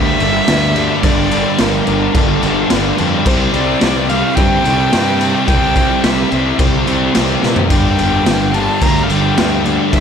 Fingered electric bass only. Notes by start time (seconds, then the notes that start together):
Already playing: D2
0.21 G1
0.48 D2
1.04 G1
1.60 G1
1.88 G1
2.15 G1
2.43 G1
2.71 G1
3.00 F2
3.26 C2
3.54 C2
3.83 C2
4.38 G2
4.67 C2
4.94 G2
5.48 C2
6.04 C2
6.32 C2
6.59 C2
6.88 C2
7.16 C2
7.44 A#2
7.70 G1
8.00 G1
8.28 G1
8.82 D2
9.10 G1
9.38 D2
9.93 G1